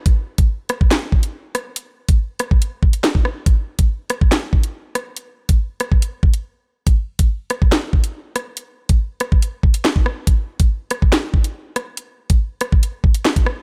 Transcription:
\new DrumStaff \with { instrumentName = "Drums" } \drummode { \time 4/4 \tempo 4 = 141 <hh bd>8. <hh bd>16 r8 <hh ss>16 bd16 <hc hh sn>8 bd16 hh16 r8 <hh ss>8 | hh8. <hh bd>16 r8 <hh ss>16 bd16 hh8 bd16 hh16 <hc hh sn>16 bd16 ss8 | <hh bd>8. <hh bd>16 r8 <hh ss>16 bd16 <hc hh sn>8 bd16 hh16 r8 <hh ss>8 | hh8. <hh bd>16 r8 <hh ss>16 bd16 hh8 bd16 hh16 r4 |
<hh bd>8. <hh bd>16 r8 <hh ss>16 bd16 <hc hh sn>8 bd16 hh16 r8 <hh ss>8 | hh8. <hh bd>16 r8 <hh ss>16 bd16 hh8 bd16 hh16 <hc hh sn>16 bd16 ss8 | <hh bd>8. <hh bd>16 r8 <hh ss>16 bd16 <hc hh sn>8 bd16 hh16 r8 <hh ss>8 | hh8. <hh bd>16 r8 <hh ss>16 bd16 hh8 bd16 hh16 <hc hh sn>16 <hh bd>16 ss8 | }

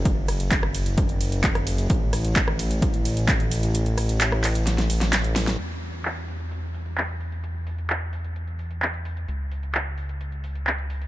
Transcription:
<<
  \new Staff \with { instrumentName = "Analog synth bass" } { \clef bass \time 4/4 \key a \lydian \tempo 4 = 130 fis,,1 | a,,1~ | a,,1 | e,1~ |
e,1 | cis,1 | }
  \new DrumStaff \with { instrumentName = "Drums" } \drummode { \time 4/4 <hh bd cymr>8 <hho cymr ss>16 hh16 <hc hh bd cymr>16 ss16 <hho cymr>16 hh16 <hh bd cymr>16 hh16 <hho cymr>16 hh16 <hc hh bd cymr>16 <hh ss>16 <hho cymr>16 hh16 | <hh bd cymr>8 <hho cymr ss>16 hh16 <hc hh bd cymr>16 ss16 <hho cymr>16 hh16 <hh bd cymr>16 hh16 <hho cymr>16 hh16 <hc hh bd cymr>16 hh16 <hho cymr>16 hh16 | <hh cymr>16 hh16 <hho cymr ss>16 hh16 <hc hh cymr>16 ss16 <hc hho cymr>16 hh16 <hh cymr sn>16 <hh sn>16 <hho cymr>16 <hh sn>16 <hc hh cymr sn>16 hh16 <hho cymr sn>16 <hh sn>16 | <cymc hh>8 hho16 hh16 <hc hh>8 hho16 hh16 hh16 hh16 hho16 hh16 <hc hh>16 hh16 hho16 hh16 |
hh8 hho16 hh16 <hc hh>8 hho16 hh16 hh16 hh16 hho16 hh16 <hc hh>16 hh16 hho16 hh16 | hh8 hho16 hh16 <hc hh>8 hho16 hh16 hh16 hh16 hho16 hh16 <hc hh>16 hh16 hho16 hh16 | }
>>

